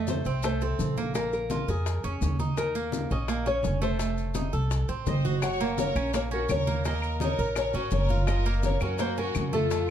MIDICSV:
0, 0, Header, 1, 6, 480
1, 0, Start_track
1, 0, Tempo, 356506
1, 1548, Time_signature, 4, 2, 24, 8
1, 13332, End_track
2, 0, Start_track
2, 0, Title_t, "Nylon-string guitar"
2, 0, Program_c, 0, 24
2, 127, Note_on_c, 0, 72, 78
2, 592, Note_off_c, 0, 72, 0
2, 608, Note_on_c, 0, 72, 80
2, 822, Note_off_c, 0, 72, 0
2, 845, Note_on_c, 0, 69, 76
2, 1547, Note_off_c, 0, 69, 0
2, 1552, Note_on_c, 0, 70, 87
2, 1773, Note_off_c, 0, 70, 0
2, 1794, Note_on_c, 0, 70, 82
2, 2280, Note_off_c, 0, 70, 0
2, 2285, Note_on_c, 0, 68, 82
2, 3183, Note_off_c, 0, 68, 0
2, 3471, Note_on_c, 0, 70, 88
2, 4139, Note_off_c, 0, 70, 0
2, 4198, Note_on_c, 0, 75, 90
2, 4670, Note_off_c, 0, 75, 0
2, 4676, Note_on_c, 0, 73, 82
2, 5118, Note_off_c, 0, 73, 0
2, 5154, Note_on_c, 0, 72, 88
2, 6837, Note_off_c, 0, 72, 0
2, 6842, Note_on_c, 0, 75, 92
2, 7310, Note_off_c, 0, 75, 0
2, 7315, Note_on_c, 0, 78, 97
2, 7758, Note_off_c, 0, 78, 0
2, 7798, Note_on_c, 0, 73, 94
2, 8271, Note_off_c, 0, 73, 0
2, 8287, Note_on_c, 0, 73, 93
2, 8354, Note_off_c, 0, 73, 0
2, 8528, Note_on_c, 0, 70, 78
2, 8742, Note_off_c, 0, 70, 0
2, 8765, Note_on_c, 0, 73, 92
2, 9251, Note_off_c, 0, 73, 0
2, 9257, Note_on_c, 0, 75, 95
2, 9736, Note_off_c, 0, 75, 0
2, 9746, Note_on_c, 0, 73, 90
2, 10175, Note_off_c, 0, 73, 0
2, 10199, Note_on_c, 0, 73, 89
2, 10439, Note_off_c, 0, 73, 0
2, 10439, Note_on_c, 0, 70, 82
2, 10668, Note_off_c, 0, 70, 0
2, 10674, Note_on_c, 0, 73, 87
2, 11145, Note_off_c, 0, 73, 0
2, 11151, Note_on_c, 0, 75, 98
2, 11643, Note_off_c, 0, 75, 0
2, 11648, Note_on_c, 0, 73, 92
2, 11885, Note_off_c, 0, 73, 0
2, 11891, Note_on_c, 0, 70, 76
2, 12103, Note_off_c, 0, 70, 0
2, 12121, Note_on_c, 0, 72, 85
2, 12362, Note_off_c, 0, 72, 0
2, 12374, Note_on_c, 0, 70, 81
2, 12809, Note_off_c, 0, 70, 0
2, 12850, Note_on_c, 0, 69, 73
2, 13332, Note_off_c, 0, 69, 0
2, 13332, End_track
3, 0, Start_track
3, 0, Title_t, "Violin section"
3, 0, Program_c, 1, 48
3, 6827, Note_on_c, 1, 72, 77
3, 7274, Note_off_c, 1, 72, 0
3, 7294, Note_on_c, 1, 73, 89
3, 7747, Note_off_c, 1, 73, 0
3, 7789, Note_on_c, 1, 70, 78
3, 8235, Note_off_c, 1, 70, 0
3, 8268, Note_on_c, 1, 70, 72
3, 8376, Note_off_c, 1, 70, 0
3, 8517, Note_on_c, 1, 66, 77
3, 8736, Note_off_c, 1, 66, 0
3, 8747, Note_on_c, 1, 70, 80
3, 9194, Note_off_c, 1, 70, 0
3, 9244, Note_on_c, 1, 70, 80
3, 9683, Note_off_c, 1, 70, 0
3, 9732, Note_on_c, 1, 70, 76
3, 10167, Note_off_c, 1, 70, 0
3, 10203, Note_on_c, 1, 70, 74
3, 10419, Note_off_c, 1, 70, 0
3, 10442, Note_on_c, 1, 66, 74
3, 10675, Note_off_c, 1, 66, 0
3, 10681, Note_on_c, 1, 70, 77
3, 11121, Note_off_c, 1, 70, 0
3, 11159, Note_on_c, 1, 70, 83
3, 11601, Note_off_c, 1, 70, 0
3, 11644, Note_on_c, 1, 70, 73
3, 11860, Note_off_c, 1, 70, 0
3, 11888, Note_on_c, 1, 66, 67
3, 12102, Note_off_c, 1, 66, 0
3, 12121, Note_on_c, 1, 66, 75
3, 12339, Note_off_c, 1, 66, 0
3, 12372, Note_on_c, 1, 66, 82
3, 12808, Note_off_c, 1, 66, 0
3, 12847, Note_on_c, 1, 65, 71
3, 13332, Note_off_c, 1, 65, 0
3, 13332, End_track
4, 0, Start_track
4, 0, Title_t, "Cuban tres"
4, 0, Program_c, 2, 25
4, 0, Note_on_c, 2, 57, 78
4, 335, Note_off_c, 2, 57, 0
4, 352, Note_on_c, 2, 60, 68
4, 583, Note_off_c, 2, 60, 0
4, 588, Note_on_c, 2, 57, 72
4, 821, Note_off_c, 2, 57, 0
4, 831, Note_on_c, 2, 60, 71
4, 1295, Note_off_c, 2, 60, 0
4, 1314, Note_on_c, 2, 58, 79
4, 1532, Note_off_c, 2, 58, 0
4, 1548, Note_on_c, 2, 58, 68
4, 2014, Note_off_c, 2, 58, 0
4, 2027, Note_on_c, 2, 65, 64
4, 2260, Note_off_c, 2, 65, 0
4, 2267, Note_on_c, 2, 70, 70
4, 2733, Note_off_c, 2, 70, 0
4, 2748, Note_on_c, 2, 61, 75
4, 3213, Note_off_c, 2, 61, 0
4, 3227, Note_on_c, 2, 63, 75
4, 3693, Note_off_c, 2, 63, 0
4, 3705, Note_on_c, 2, 58, 86
4, 4172, Note_off_c, 2, 58, 0
4, 4189, Note_on_c, 2, 61, 66
4, 4421, Note_off_c, 2, 61, 0
4, 4423, Note_on_c, 2, 58, 76
4, 4658, Note_off_c, 2, 58, 0
4, 4659, Note_on_c, 2, 61, 67
4, 5129, Note_off_c, 2, 61, 0
4, 5138, Note_on_c, 2, 57, 84
4, 5358, Note_off_c, 2, 57, 0
4, 5374, Note_on_c, 2, 57, 64
4, 5847, Note_off_c, 2, 57, 0
4, 5859, Note_on_c, 2, 63, 63
4, 6096, Note_off_c, 2, 63, 0
4, 6099, Note_on_c, 2, 69, 63
4, 6569, Note_off_c, 2, 69, 0
4, 6581, Note_on_c, 2, 60, 69
4, 7050, Note_off_c, 2, 60, 0
4, 7067, Note_on_c, 2, 66, 70
4, 7533, Note_off_c, 2, 66, 0
4, 7547, Note_on_c, 2, 58, 82
4, 8013, Note_off_c, 2, 58, 0
4, 8023, Note_on_c, 2, 61, 67
4, 8256, Note_off_c, 2, 61, 0
4, 8262, Note_on_c, 2, 58, 73
4, 8493, Note_off_c, 2, 58, 0
4, 8498, Note_on_c, 2, 61, 75
4, 8969, Note_off_c, 2, 61, 0
4, 8984, Note_on_c, 2, 58, 80
4, 9211, Note_off_c, 2, 58, 0
4, 9227, Note_on_c, 2, 58, 69
4, 9693, Note_off_c, 2, 58, 0
4, 9707, Note_on_c, 2, 63, 68
4, 9940, Note_off_c, 2, 63, 0
4, 9949, Note_on_c, 2, 70, 68
4, 10414, Note_off_c, 2, 70, 0
4, 10428, Note_on_c, 2, 61, 70
4, 10894, Note_off_c, 2, 61, 0
4, 10908, Note_on_c, 2, 65, 77
4, 11374, Note_off_c, 2, 65, 0
4, 11388, Note_on_c, 2, 58, 84
4, 11854, Note_off_c, 2, 58, 0
4, 11867, Note_on_c, 2, 61, 70
4, 12101, Note_off_c, 2, 61, 0
4, 12113, Note_on_c, 2, 58, 79
4, 12344, Note_off_c, 2, 58, 0
4, 12356, Note_on_c, 2, 61, 74
4, 12819, Note_off_c, 2, 61, 0
4, 12830, Note_on_c, 2, 57, 87
4, 13060, Note_off_c, 2, 57, 0
4, 13076, Note_on_c, 2, 57, 71
4, 13332, Note_off_c, 2, 57, 0
4, 13332, End_track
5, 0, Start_track
5, 0, Title_t, "Upright bass"
5, 0, Program_c, 3, 32
5, 0, Note_on_c, 3, 41, 87
5, 268, Note_off_c, 3, 41, 0
5, 346, Note_on_c, 3, 36, 80
5, 1017, Note_off_c, 3, 36, 0
5, 1064, Note_on_c, 3, 34, 89
5, 2188, Note_off_c, 3, 34, 0
5, 2264, Note_on_c, 3, 41, 89
5, 2712, Note_off_c, 3, 41, 0
5, 2744, Note_on_c, 3, 41, 68
5, 2969, Note_off_c, 3, 41, 0
5, 2983, Note_on_c, 3, 39, 87
5, 4108, Note_off_c, 3, 39, 0
5, 4186, Note_on_c, 3, 34, 82
5, 4856, Note_off_c, 3, 34, 0
5, 4909, Note_on_c, 3, 29, 86
5, 6031, Note_off_c, 3, 29, 0
5, 6107, Note_on_c, 3, 36, 88
5, 6554, Note_off_c, 3, 36, 0
5, 6584, Note_on_c, 3, 33, 61
5, 6809, Note_off_c, 3, 33, 0
5, 6821, Note_on_c, 3, 30, 85
5, 7947, Note_off_c, 3, 30, 0
5, 8018, Note_on_c, 3, 34, 82
5, 8692, Note_off_c, 3, 34, 0
5, 8743, Note_on_c, 3, 39, 89
5, 9867, Note_off_c, 3, 39, 0
5, 9945, Note_on_c, 3, 34, 84
5, 10393, Note_off_c, 3, 34, 0
5, 10419, Note_on_c, 3, 32, 66
5, 10646, Note_off_c, 3, 32, 0
5, 10659, Note_on_c, 3, 30, 91
5, 11786, Note_off_c, 3, 30, 0
5, 11863, Note_on_c, 3, 42, 83
5, 12536, Note_off_c, 3, 42, 0
5, 12593, Note_on_c, 3, 41, 92
5, 13332, Note_off_c, 3, 41, 0
5, 13332, End_track
6, 0, Start_track
6, 0, Title_t, "Drums"
6, 99, Note_on_c, 9, 70, 65
6, 106, Note_on_c, 9, 63, 90
6, 112, Note_on_c, 9, 60, 56
6, 233, Note_off_c, 9, 70, 0
6, 240, Note_off_c, 9, 63, 0
6, 246, Note_off_c, 9, 60, 0
6, 333, Note_on_c, 9, 70, 27
6, 338, Note_on_c, 9, 63, 30
6, 356, Note_on_c, 9, 60, 33
6, 467, Note_off_c, 9, 70, 0
6, 473, Note_off_c, 9, 63, 0
6, 491, Note_off_c, 9, 60, 0
6, 576, Note_on_c, 9, 70, 66
6, 582, Note_on_c, 9, 63, 31
6, 595, Note_on_c, 9, 60, 62
6, 710, Note_off_c, 9, 70, 0
6, 717, Note_off_c, 9, 63, 0
6, 729, Note_off_c, 9, 60, 0
6, 819, Note_on_c, 9, 63, 33
6, 821, Note_on_c, 9, 70, 25
6, 841, Note_on_c, 9, 60, 31
6, 954, Note_off_c, 9, 63, 0
6, 955, Note_off_c, 9, 70, 0
6, 976, Note_off_c, 9, 60, 0
6, 1058, Note_on_c, 9, 63, 72
6, 1071, Note_on_c, 9, 70, 63
6, 1077, Note_on_c, 9, 60, 30
6, 1077, Note_on_c, 9, 61, 72
6, 1193, Note_off_c, 9, 63, 0
6, 1205, Note_off_c, 9, 70, 0
6, 1212, Note_off_c, 9, 60, 0
6, 1212, Note_off_c, 9, 61, 0
6, 1304, Note_on_c, 9, 63, 70
6, 1310, Note_on_c, 9, 70, 27
6, 1318, Note_on_c, 9, 60, 32
6, 1438, Note_off_c, 9, 63, 0
6, 1445, Note_off_c, 9, 70, 0
6, 1452, Note_off_c, 9, 60, 0
6, 1544, Note_on_c, 9, 70, 65
6, 1545, Note_on_c, 9, 63, 32
6, 1553, Note_on_c, 9, 60, 62
6, 1678, Note_off_c, 9, 70, 0
6, 1680, Note_off_c, 9, 63, 0
6, 1688, Note_off_c, 9, 60, 0
6, 1782, Note_on_c, 9, 63, 33
6, 1788, Note_on_c, 9, 70, 26
6, 1916, Note_off_c, 9, 63, 0
6, 1923, Note_off_c, 9, 70, 0
6, 2018, Note_on_c, 9, 63, 87
6, 2022, Note_on_c, 9, 70, 64
6, 2032, Note_on_c, 9, 60, 53
6, 2152, Note_off_c, 9, 63, 0
6, 2156, Note_off_c, 9, 70, 0
6, 2167, Note_off_c, 9, 60, 0
6, 2257, Note_on_c, 9, 63, 30
6, 2267, Note_on_c, 9, 70, 28
6, 2277, Note_on_c, 9, 60, 32
6, 2391, Note_off_c, 9, 63, 0
6, 2402, Note_off_c, 9, 70, 0
6, 2412, Note_off_c, 9, 60, 0
6, 2501, Note_on_c, 9, 63, 31
6, 2507, Note_on_c, 9, 60, 61
6, 2510, Note_on_c, 9, 70, 65
6, 2635, Note_off_c, 9, 63, 0
6, 2641, Note_off_c, 9, 60, 0
6, 2645, Note_off_c, 9, 70, 0
6, 2741, Note_on_c, 9, 63, 32
6, 2748, Note_on_c, 9, 70, 25
6, 2754, Note_on_c, 9, 60, 31
6, 2876, Note_off_c, 9, 63, 0
6, 2882, Note_off_c, 9, 70, 0
6, 2889, Note_off_c, 9, 60, 0
6, 2979, Note_on_c, 9, 63, 71
6, 2986, Note_on_c, 9, 70, 66
6, 2993, Note_on_c, 9, 60, 30
6, 2993, Note_on_c, 9, 61, 71
6, 3113, Note_off_c, 9, 63, 0
6, 3121, Note_off_c, 9, 70, 0
6, 3128, Note_off_c, 9, 60, 0
6, 3128, Note_off_c, 9, 61, 0
6, 3219, Note_on_c, 9, 63, 76
6, 3227, Note_on_c, 9, 70, 28
6, 3229, Note_on_c, 9, 60, 33
6, 3354, Note_off_c, 9, 63, 0
6, 3362, Note_off_c, 9, 70, 0
6, 3363, Note_off_c, 9, 60, 0
6, 3466, Note_on_c, 9, 70, 68
6, 3467, Note_on_c, 9, 60, 64
6, 3601, Note_off_c, 9, 60, 0
6, 3601, Note_off_c, 9, 70, 0
6, 3702, Note_on_c, 9, 63, 32
6, 3706, Note_on_c, 9, 70, 27
6, 3836, Note_off_c, 9, 63, 0
6, 3840, Note_off_c, 9, 70, 0
6, 3935, Note_on_c, 9, 63, 90
6, 3943, Note_on_c, 9, 60, 51
6, 3946, Note_on_c, 9, 70, 67
6, 4069, Note_off_c, 9, 63, 0
6, 4078, Note_off_c, 9, 60, 0
6, 4081, Note_off_c, 9, 70, 0
6, 4180, Note_on_c, 9, 70, 28
6, 4182, Note_on_c, 9, 60, 32
6, 4182, Note_on_c, 9, 63, 31
6, 4314, Note_off_c, 9, 70, 0
6, 4316, Note_off_c, 9, 60, 0
6, 4316, Note_off_c, 9, 63, 0
6, 4420, Note_on_c, 9, 60, 61
6, 4427, Note_on_c, 9, 63, 32
6, 4430, Note_on_c, 9, 70, 64
6, 4555, Note_off_c, 9, 60, 0
6, 4562, Note_off_c, 9, 63, 0
6, 4565, Note_off_c, 9, 70, 0
6, 4654, Note_on_c, 9, 63, 34
6, 4657, Note_on_c, 9, 60, 32
6, 4659, Note_on_c, 9, 70, 26
6, 4789, Note_off_c, 9, 63, 0
6, 4792, Note_off_c, 9, 60, 0
6, 4794, Note_off_c, 9, 70, 0
6, 4887, Note_on_c, 9, 63, 76
6, 4898, Note_on_c, 9, 60, 28
6, 4898, Note_on_c, 9, 61, 74
6, 4904, Note_on_c, 9, 70, 65
6, 5021, Note_off_c, 9, 63, 0
6, 5033, Note_off_c, 9, 60, 0
6, 5033, Note_off_c, 9, 61, 0
6, 5039, Note_off_c, 9, 70, 0
6, 5144, Note_on_c, 9, 60, 31
6, 5148, Note_on_c, 9, 70, 28
6, 5278, Note_off_c, 9, 60, 0
6, 5283, Note_off_c, 9, 70, 0
6, 5377, Note_on_c, 9, 63, 33
6, 5378, Note_on_c, 9, 60, 61
6, 5386, Note_on_c, 9, 70, 67
6, 5511, Note_off_c, 9, 63, 0
6, 5513, Note_off_c, 9, 60, 0
6, 5521, Note_off_c, 9, 70, 0
6, 5620, Note_on_c, 9, 63, 32
6, 5623, Note_on_c, 9, 70, 27
6, 5755, Note_off_c, 9, 63, 0
6, 5757, Note_off_c, 9, 70, 0
6, 5850, Note_on_c, 9, 70, 65
6, 5854, Note_on_c, 9, 63, 87
6, 5856, Note_on_c, 9, 60, 57
6, 5984, Note_off_c, 9, 70, 0
6, 5989, Note_off_c, 9, 63, 0
6, 5991, Note_off_c, 9, 60, 0
6, 6099, Note_on_c, 9, 60, 31
6, 6099, Note_on_c, 9, 70, 27
6, 6108, Note_on_c, 9, 63, 30
6, 6234, Note_off_c, 9, 60, 0
6, 6234, Note_off_c, 9, 70, 0
6, 6243, Note_off_c, 9, 63, 0
6, 6342, Note_on_c, 9, 60, 63
6, 6342, Note_on_c, 9, 70, 65
6, 6346, Note_on_c, 9, 63, 31
6, 6477, Note_off_c, 9, 60, 0
6, 6477, Note_off_c, 9, 70, 0
6, 6481, Note_off_c, 9, 63, 0
6, 6577, Note_on_c, 9, 70, 25
6, 6582, Note_on_c, 9, 63, 35
6, 6583, Note_on_c, 9, 60, 30
6, 6712, Note_off_c, 9, 70, 0
6, 6717, Note_off_c, 9, 63, 0
6, 6718, Note_off_c, 9, 60, 0
6, 6819, Note_on_c, 9, 70, 65
6, 6823, Note_on_c, 9, 60, 29
6, 6823, Note_on_c, 9, 61, 74
6, 6824, Note_on_c, 9, 63, 75
6, 6953, Note_off_c, 9, 70, 0
6, 6958, Note_off_c, 9, 60, 0
6, 6958, Note_off_c, 9, 61, 0
6, 6959, Note_off_c, 9, 63, 0
6, 7064, Note_on_c, 9, 63, 81
6, 7065, Note_on_c, 9, 60, 33
6, 7069, Note_on_c, 9, 70, 27
6, 7199, Note_off_c, 9, 63, 0
6, 7200, Note_off_c, 9, 60, 0
6, 7204, Note_off_c, 9, 70, 0
6, 7296, Note_on_c, 9, 63, 31
6, 7300, Note_on_c, 9, 60, 62
6, 7301, Note_on_c, 9, 70, 63
6, 7304, Note_on_c, 9, 75, 64
6, 7431, Note_off_c, 9, 63, 0
6, 7435, Note_off_c, 9, 60, 0
6, 7436, Note_off_c, 9, 70, 0
6, 7439, Note_off_c, 9, 75, 0
6, 7544, Note_on_c, 9, 63, 33
6, 7547, Note_on_c, 9, 70, 27
6, 7678, Note_off_c, 9, 63, 0
6, 7682, Note_off_c, 9, 70, 0
6, 7779, Note_on_c, 9, 63, 89
6, 7785, Note_on_c, 9, 70, 66
6, 7788, Note_on_c, 9, 60, 53
6, 7914, Note_off_c, 9, 63, 0
6, 7920, Note_off_c, 9, 70, 0
6, 7922, Note_off_c, 9, 60, 0
6, 8020, Note_on_c, 9, 63, 31
6, 8022, Note_on_c, 9, 70, 27
6, 8028, Note_on_c, 9, 75, 65
6, 8031, Note_on_c, 9, 60, 31
6, 8154, Note_off_c, 9, 63, 0
6, 8156, Note_off_c, 9, 70, 0
6, 8162, Note_off_c, 9, 75, 0
6, 8166, Note_off_c, 9, 60, 0
6, 8263, Note_on_c, 9, 70, 67
6, 8267, Note_on_c, 9, 63, 31
6, 8268, Note_on_c, 9, 60, 65
6, 8398, Note_off_c, 9, 70, 0
6, 8401, Note_off_c, 9, 63, 0
6, 8403, Note_off_c, 9, 60, 0
6, 8501, Note_on_c, 9, 70, 26
6, 8510, Note_on_c, 9, 63, 33
6, 8512, Note_on_c, 9, 60, 29
6, 8635, Note_off_c, 9, 70, 0
6, 8645, Note_off_c, 9, 63, 0
6, 8647, Note_off_c, 9, 60, 0
6, 8737, Note_on_c, 9, 70, 70
6, 8743, Note_on_c, 9, 63, 80
6, 8748, Note_on_c, 9, 75, 65
6, 8753, Note_on_c, 9, 60, 31
6, 8753, Note_on_c, 9, 61, 71
6, 8871, Note_off_c, 9, 70, 0
6, 8877, Note_off_c, 9, 63, 0
6, 8883, Note_off_c, 9, 75, 0
6, 8888, Note_off_c, 9, 60, 0
6, 8888, Note_off_c, 9, 61, 0
6, 8981, Note_on_c, 9, 70, 27
6, 8984, Note_on_c, 9, 63, 69
6, 8992, Note_on_c, 9, 60, 32
6, 9116, Note_off_c, 9, 70, 0
6, 9118, Note_off_c, 9, 63, 0
6, 9126, Note_off_c, 9, 60, 0
6, 9219, Note_on_c, 9, 70, 68
6, 9227, Note_on_c, 9, 63, 33
6, 9229, Note_on_c, 9, 60, 66
6, 9354, Note_off_c, 9, 70, 0
6, 9361, Note_off_c, 9, 63, 0
6, 9364, Note_off_c, 9, 60, 0
6, 9455, Note_on_c, 9, 75, 61
6, 9463, Note_on_c, 9, 63, 33
6, 9468, Note_on_c, 9, 70, 27
6, 9590, Note_off_c, 9, 75, 0
6, 9597, Note_off_c, 9, 63, 0
6, 9603, Note_off_c, 9, 70, 0
6, 9696, Note_on_c, 9, 63, 86
6, 9703, Note_on_c, 9, 60, 57
6, 9712, Note_on_c, 9, 70, 69
6, 9831, Note_off_c, 9, 63, 0
6, 9838, Note_off_c, 9, 60, 0
6, 9847, Note_off_c, 9, 70, 0
6, 9942, Note_on_c, 9, 63, 31
6, 9945, Note_on_c, 9, 60, 34
6, 9948, Note_on_c, 9, 70, 28
6, 10077, Note_off_c, 9, 63, 0
6, 10079, Note_off_c, 9, 60, 0
6, 10083, Note_off_c, 9, 70, 0
6, 10173, Note_on_c, 9, 75, 60
6, 10179, Note_on_c, 9, 70, 65
6, 10180, Note_on_c, 9, 60, 66
6, 10189, Note_on_c, 9, 63, 32
6, 10307, Note_off_c, 9, 75, 0
6, 10314, Note_off_c, 9, 70, 0
6, 10315, Note_off_c, 9, 60, 0
6, 10323, Note_off_c, 9, 63, 0
6, 10415, Note_on_c, 9, 70, 26
6, 10421, Note_on_c, 9, 63, 33
6, 10423, Note_on_c, 9, 60, 31
6, 10550, Note_off_c, 9, 70, 0
6, 10555, Note_off_c, 9, 63, 0
6, 10558, Note_off_c, 9, 60, 0
6, 10649, Note_on_c, 9, 70, 67
6, 10661, Note_on_c, 9, 63, 76
6, 10664, Note_on_c, 9, 60, 31
6, 10664, Note_on_c, 9, 61, 76
6, 10784, Note_off_c, 9, 70, 0
6, 10795, Note_off_c, 9, 63, 0
6, 10798, Note_off_c, 9, 60, 0
6, 10798, Note_off_c, 9, 61, 0
6, 10888, Note_on_c, 9, 70, 29
6, 10905, Note_on_c, 9, 60, 33
6, 10906, Note_on_c, 9, 63, 80
6, 11023, Note_off_c, 9, 70, 0
6, 11039, Note_off_c, 9, 60, 0
6, 11041, Note_off_c, 9, 63, 0
6, 11137, Note_on_c, 9, 60, 64
6, 11142, Note_on_c, 9, 70, 67
6, 11143, Note_on_c, 9, 75, 66
6, 11151, Note_on_c, 9, 63, 33
6, 11272, Note_off_c, 9, 60, 0
6, 11277, Note_off_c, 9, 70, 0
6, 11278, Note_off_c, 9, 75, 0
6, 11286, Note_off_c, 9, 63, 0
6, 11384, Note_on_c, 9, 63, 33
6, 11386, Note_on_c, 9, 70, 28
6, 11519, Note_off_c, 9, 63, 0
6, 11521, Note_off_c, 9, 70, 0
6, 11620, Note_on_c, 9, 70, 69
6, 11621, Note_on_c, 9, 63, 89
6, 11624, Note_on_c, 9, 60, 56
6, 11755, Note_off_c, 9, 70, 0
6, 11756, Note_off_c, 9, 63, 0
6, 11759, Note_off_c, 9, 60, 0
6, 11851, Note_on_c, 9, 70, 28
6, 11860, Note_on_c, 9, 75, 66
6, 11866, Note_on_c, 9, 63, 31
6, 11872, Note_on_c, 9, 60, 34
6, 11985, Note_off_c, 9, 70, 0
6, 11994, Note_off_c, 9, 75, 0
6, 12001, Note_off_c, 9, 63, 0
6, 12007, Note_off_c, 9, 60, 0
6, 12095, Note_on_c, 9, 70, 67
6, 12104, Note_on_c, 9, 63, 33
6, 12105, Note_on_c, 9, 60, 66
6, 12229, Note_off_c, 9, 70, 0
6, 12238, Note_off_c, 9, 63, 0
6, 12240, Note_off_c, 9, 60, 0
6, 12345, Note_on_c, 9, 63, 34
6, 12345, Note_on_c, 9, 70, 28
6, 12354, Note_on_c, 9, 60, 32
6, 12479, Note_off_c, 9, 70, 0
6, 12480, Note_off_c, 9, 63, 0
6, 12488, Note_off_c, 9, 60, 0
6, 12586, Note_on_c, 9, 75, 66
6, 12587, Note_on_c, 9, 70, 66
6, 12590, Note_on_c, 9, 63, 76
6, 12599, Note_on_c, 9, 60, 31
6, 12599, Note_on_c, 9, 61, 73
6, 12721, Note_off_c, 9, 75, 0
6, 12722, Note_off_c, 9, 70, 0
6, 12724, Note_off_c, 9, 63, 0
6, 12734, Note_off_c, 9, 60, 0
6, 12734, Note_off_c, 9, 61, 0
6, 12826, Note_on_c, 9, 63, 69
6, 12831, Note_on_c, 9, 70, 28
6, 12839, Note_on_c, 9, 60, 34
6, 12960, Note_off_c, 9, 63, 0
6, 12965, Note_off_c, 9, 70, 0
6, 12973, Note_off_c, 9, 60, 0
6, 13069, Note_on_c, 9, 63, 34
6, 13071, Note_on_c, 9, 70, 70
6, 13076, Note_on_c, 9, 60, 63
6, 13203, Note_off_c, 9, 63, 0
6, 13205, Note_off_c, 9, 70, 0
6, 13210, Note_off_c, 9, 60, 0
6, 13332, End_track
0, 0, End_of_file